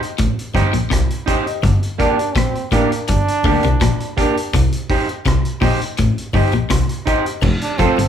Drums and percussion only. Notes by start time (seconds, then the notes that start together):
0.03 closed hi-hat
0.18 kick, closed hi-hat
0.39 closed hi-hat
0.55 kick, closed hi-hat
0.73 closed hi-hat
0.91 kick, cross-stick, closed hi-hat
1.10 closed hi-hat
1.28 kick, closed hi-hat
1.47 closed hi-hat
1.63 kick, closed hi-hat
1.83 closed hi-hat
2.00 kick, closed hi-hat
2.19 closed hi-hat
2.36 kick, cross-stick, closed hi-hat
2.55 closed hi-hat
2.72 kick, cross-stick, closed hi-hat
2.92 closed hi-hat
3.08 kick, closed hi-hat
3.28 closed hi-hat
3.44 kick, open hi-hat
3.63 closed hi-hat
3.81 kick, cross-stick, closed hi-hat
4.00 closed hi-hat
4.18 kick, closed hi-hat
4.37 closed hi-hat
4.54 kick, closed hi-hat
4.72 closed hi-hat
4.90 kick, open hi-hat
5.09 closed hi-hat
5.26 kick, cross-stick, closed hi-hat
5.45 closed hi-hat
5.62 kick, open hi-hat
5.82 closed hi-hat
5.97 kick, closed hi-hat
6.18 closed hi-hat
6.34 kick, open hi-hat
6.52 closed hi-hat
6.70 kick, cross-stick, closed hi-hat
6.89 closed hi-hat
7.07 kick, closed hi-hat
7.26 closed hi-hat
7.43 kick, crash
7.61 closed hi-hat
7.79 kick, closed hi-hat
7.98 closed hi-hat